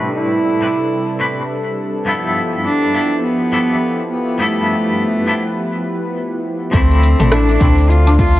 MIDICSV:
0, 0, Header, 1, 7, 480
1, 0, Start_track
1, 0, Tempo, 582524
1, 1708, Time_signature, 4, 2, 24, 8
1, 6919, End_track
2, 0, Start_track
2, 0, Title_t, "Analog synth pad"
2, 0, Program_c, 0, 89
2, 0, Note_on_c, 0, 48, 70
2, 0, Note_on_c, 0, 55, 80
2, 0, Note_on_c, 0, 62, 69
2, 0, Note_on_c, 0, 69, 72
2, 0, Note_on_c, 0, 71, 75
2, 1672, Note_off_c, 0, 71, 0
2, 1673, Note_off_c, 0, 48, 0
2, 1673, Note_off_c, 0, 55, 0
2, 1673, Note_off_c, 0, 62, 0
2, 1706, Note_on_c, 0, 59, 71
2, 1706, Note_on_c, 0, 64, 69
2, 1706, Note_on_c, 0, 67, 73
2, 1708, Note_on_c, 0, 53, 82
2, 3592, Note_off_c, 0, 69, 0
2, 3622, Note_on_c, 0, 71, 70
2, 5514, Note_off_c, 0, 59, 0
2, 5514, Note_off_c, 0, 64, 0
2, 5514, Note_off_c, 0, 67, 0
2, 5515, Note_off_c, 0, 53, 0
2, 5526, Note_off_c, 0, 71, 0
2, 5544, Note_on_c, 0, 62, 84
2, 5545, Note_on_c, 0, 69, 76
2, 5546, Note_on_c, 0, 74, 70
2, 6919, Note_off_c, 0, 62, 0
2, 6919, Note_off_c, 0, 69, 0
2, 6919, Note_off_c, 0, 74, 0
2, 6919, End_track
3, 0, Start_track
3, 0, Title_t, "Cello"
3, 0, Program_c, 1, 42
3, 30, Note_on_c, 1, 64, 101
3, 1436, Note_off_c, 1, 64, 0
3, 2188, Note_on_c, 1, 62, 107
3, 2635, Note_off_c, 1, 62, 0
3, 2674, Note_on_c, 1, 59, 105
3, 3358, Note_off_c, 1, 59, 0
3, 3394, Note_on_c, 1, 59, 89
3, 3633, Note_on_c, 1, 57, 94
3, 3645, Note_off_c, 1, 59, 0
3, 5070, Note_off_c, 1, 57, 0
3, 5549, Note_on_c, 1, 60, 100
3, 6026, Note_on_c, 1, 62, 103
3, 6039, Note_off_c, 1, 60, 0
3, 6505, Note_on_c, 1, 65, 104
3, 6517, Note_off_c, 1, 62, 0
3, 6739, Note_off_c, 1, 65, 0
3, 6744, Note_on_c, 1, 65, 112
3, 6919, Note_off_c, 1, 65, 0
3, 6919, End_track
4, 0, Start_track
4, 0, Title_t, "Clean electric guitar"
4, 0, Program_c, 2, 27
4, 0, Note_on_c, 2, 45, 92
4, 0, Note_on_c, 2, 55, 78
4, 0, Note_on_c, 2, 60, 83
4, 0, Note_on_c, 2, 64, 85
4, 0, Note_on_c, 2, 71, 101
4, 476, Note_off_c, 2, 45, 0
4, 479, Note_off_c, 2, 55, 0
4, 483, Note_off_c, 2, 60, 0
4, 489, Note_off_c, 2, 64, 0
4, 492, Note_off_c, 2, 71, 0
4, 499, Note_on_c, 2, 45, 78
4, 501, Note_on_c, 2, 55, 73
4, 508, Note_on_c, 2, 60, 66
4, 509, Note_on_c, 2, 62, 78
4, 515, Note_on_c, 2, 64, 59
4, 516, Note_on_c, 2, 71, 89
4, 624, Note_off_c, 2, 45, 0
4, 626, Note_off_c, 2, 55, 0
4, 628, Note_off_c, 2, 60, 0
4, 630, Note_off_c, 2, 62, 0
4, 631, Note_off_c, 2, 64, 0
4, 633, Note_off_c, 2, 71, 0
4, 981, Note_on_c, 2, 45, 76
4, 985, Note_on_c, 2, 55, 58
4, 987, Note_on_c, 2, 60, 70
4, 993, Note_on_c, 2, 64, 65
4, 994, Note_on_c, 2, 62, 60
4, 997, Note_on_c, 2, 71, 78
4, 1162, Note_off_c, 2, 45, 0
4, 1163, Note_off_c, 2, 55, 0
4, 1165, Note_off_c, 2, 60, 0
4, 1167, Note_off_c, 2, 62, 0
4, 1168, Note_off_c, 2, 64, 0
4, 1170, Note_off_c, 2, 71, 0
4, 1692, Note_on_c, 2, 43, 96
4, 1699, Note_on_c, 2, 53, 87
4, 1706, Note_on_c, 2, 59, 85
4, 1712, Note_on_c, 2, 62, 83
4, 1716, Note_off_c, 2, 62, 0
4, 1719, Note_on_c, 2, 64, 84
4, 1724, Note_on_c, 2, 69, 100
4, 2397, Note_off_c, 2, 43, 0
4, 2400, Note_off_c, 2, 53, 0
4, 2403, Note_off_c, 2, 59, 0
4, 2410, Note_off_c, 2, 64, 0
4, 2413, Note_off_c, 2, 69, 0
4, 2418, Note_on_c, 2, 43, 74
4, 2425, Note_on_c, 2, 59, 73
4, 2426, Note_on_c, 2, 53, 60
4, 2432, Note_on_c, 2, 64, 69
4, 2434, Note_on_c, 2, 62, 67
4, 2440, Note_on_c, 2, 69, 72
4, 2545, Note_off_c, 2, 43, 0
4, 2546, Note_off_c, 2, 53, 0
4, 2549, Note_off_c, 2, 59, 0
4, 2550, Note_off_c, 2, 62, 0
4, 2552, Note_off_c, 2, 64, 0
4, 2553, Note_off_c, 2, 69, 0
4, 2899, Note_on_c, 2, 43, 79
4, 2901, Note_on_c, 2, 53, 67
4, 2906, Note_on_c, 2, 62, 75
4, 2909, Note_on_c, 2, 59, 61
4, 2915, Note_on_c, 2, 64, 62
4, 2915, Note_on_c, 2, 69, 90
4, 3081, Note_off_c, 2, 43, 0
4, 3083, Note_off_c, 2, 53, 0
4, 3084, Note_off_c, 2, 59, 0
4, 3086, Note_off_c, 2, 62, 0
4, 3087, Note_off_c, 2, 64, 0
4, 3089, Note_off_c, 2, 69, 0
4, 3609, Note_on_c, 2, 43, 91
4, 3616, Note_on_c, 2, 53, 87
4, 3622, Note_on_c, 2, 59, 87
4, 3628, Note_on_c, 2, 62, 84
4, 3632, Note_off_c, 2, 62, 0
4, 3635, Note_on_c, 2, 64, 87
4, 3642, Note_on_c, 2, 69, 102
4, 4315, Note_off_c, 2, 43, 0
4, 4319, Note_off_c, 2, 53, 0
4, 4322, Note_off_c, 2, 59, 0
4, 4328, Note_off_c, 2, 64, 0
4, 4331, Note_off_c, 2, 69, 0
4, 4336, Note_on_c, 2, 43, 80
4, 4340, Note_on_c, 2, 53, 69
4, 4343, Note_on_c, 2, 59, 73
4, 4347, Note_on_c, 2, 62, 73
4, 4350, Note_on_c, 2, 64, 72
4, 4357, Note_on_c, 2, 69, 75
4, 4463, Note_off_c, 2, 43, 0
4, 4465, Note_off_c, 2, 53, 0
4, 4467, Note_off_c, 2, 59, 0
4, 4468, Note_off_c, 2, 62, 0
4, 4470, Note_off_c, 2, 64, 0
4, 4472, Note_off_c, 2, 69, 0
4, 5530, Note_on_c, 2, 53, 103
4, 5538, Note_on_c, 2, 57, 91
4, 5546, Note_on_c, 2, 60, 97
4, 5555, Note_on_c, 2, 62, 86
4, 5562, Note_on_c, 2, 64, 107
4, 6235, Note_off_c, 2, 53, 0
4, 6239, Note_off_c, 2, 57, 0
4, 6243, Note_off_c, 2, 60, 0
4, 6248, Note_off_c, 2, 62, 0
4, 6252, Note_off_c, 2, 64, 0
4, 6260, Note_on_c, 2, 53, 84
4, 6264, Note_on_c, 2, 57, 81
4, 6268, Note_on_c, 2, 60, 75
4, 6273, Note_on_c, 2, 62, 79
4, 6277, Note_on_c, 2, 64, 90
4, 6385, Note_off_c, 2, 53, 0
4, 6387, Note_off_c, 2, 57, 0
4, 6389, Note_off_c, 2, 60, 0
4, 6391, Note_off_c, 2, 62, 0
4, 6393, Note_off_c, 2, 64, 0
4, 6919, End_track
5, 0, Start_track
5, 0, Title_t, "Guzheng"
5, 0, Program_c, 3, 107
5, 5547, Note_on_c, 3, 57, 77
5, 5926, Note_off_c, 3, 57, 0
5, 5929, Note_on_c, 3, 57, 98
5, 6027, Note_on_c, 3, 64, 86
5, 6170, Note_on_c, 3, 62, 76
5, 6268, Note_on_c, 3, 60, 76
5, 6646, Note_off_c, 3, 62, 0
5, 6650, Note_on_c, 3, 62, 106
5, 6745, Note_off_c, 3, 57, 0
5, 6748, Note_on_c, 3, 57, 71
5, 6919, Note_off_c, 3, 57, 0
5, 6919, Note_off_c, 3, 60, 0
5, 6919, Note_off_c, 3, 62, 0
5, 6919, Note_off_c, 3, 64, 0
5, 6919, End_track
6, 0, Start_track
6, 0, Title_t, "Sub bass"
6, 0, Program_c, 4, 38
6, 5548, Note_on_c, 4, 38, 99
6, 5889, Note_off_c, 4, 38, 0
6, 5930, Note_on_c, 4, 33, 97
6, 6239, Note_off_c, 4, 33, 0
6, 6268, Note_on_c, 4, 38, 93
6, 6919, Note_off_c, 4, 38, 0
6, 6919, End_track
7, 0, Start_track
7, 0, Title_t, "Drums"
7, 5548, Note_on_c, 9, 36, 113
7, 5549, Note_on_c, 9, 46, 56
7, 5552, Note_on_c, 9, 82, 41
7, 5630, Note_off_c, 9, 36, 0
7, 5632, Note_off_c, 9, 46, 0
7, 5635, Note_off_c, 9, 82, 0
7, 5693, Note_on_c, 9, 46, 35
7, 5695, Note_on_c, 9, 82, 33
7, 5775, Note_off_c, 9, 46, 0
7, 5778, Note_off_c, 9, 82, 0
7, 5791, Note_on_c, 9, 82, 79
7, 5873, Note_off_c, 9, 82, 0
7, 5931, Note_on_c, 9, 45, 78
7, 5931, Note_on_c, 9, 46, 45
7, 5934, Note_on_c, 9, 82, 33
7, 6013, Note_off_c, 9, 45, 0
7, 6013, Note_off_c, 9, 46, 0
7, 6016, Note_off_c, 9, 82, 0
7, 6029, Note_on_c, 9, 37, 101
7, 6029, Note_on_c, 9, 46, 56
7, 6032, Note_on_c, 9, 82, 41
7, 6112, Note_off_c, 9, 37, 0
7, 6112, Note_off_c, 9, 46, 0
7, 6114, Note_off_c, 9, 82, 0
7, 6174, Note_on_c, 9, 82, 32
7, 6256, Note_off_c, 9, 82, 0
7, 6269, Note_on_c, 9, 36, 109
7, 6269, Note_on_c, 9, 45, 78
7, 6272, Note_on_c, 9, 82, 73
7, 6351, Note_off_c, 9, 36, 0
7, 6352, Note_off_c, 9, 45, 0
7, 6355, Note_off_c, 9, 82, 0
7, 6411, Note_on_c, 9, 46, 45
7, 6414, Note_on_c, 9, 82, 30
7, 6494, Note_off_c, 9, 46, 0
7, 6497, Note_off_c, 9, 82, 0
7, 6510, Note_on_c, 9, 46, 59
7, 6513, Note_on_c, 9, 82, 40
7, 6592, Note_off_c, 9, 46, 0
7, 6595, Note_off_c, 9, 82, 0
7, 6653, Note_on_c, 9, 46, 32
7, 6655, Note_on_c, 9, 82, 31
7, 6735, Note_off_c, 9, 46, 0
7, 6738, Note_off_c, 9, 82, 0
7, 6749, Note_on_c, 9, 36, 108
7, 6754, Note_on_c, 9, 82, 70
7, 6831, Note_off_c, 9, 36, 0
7, 6837, Note_off_c, 9, 82, 0
7, 6894, Note_on_c, 9, 46, 45
7, 6919, Note_off_c, 9, 46, 0
7, 6919, End_track
0, 0, End_of_file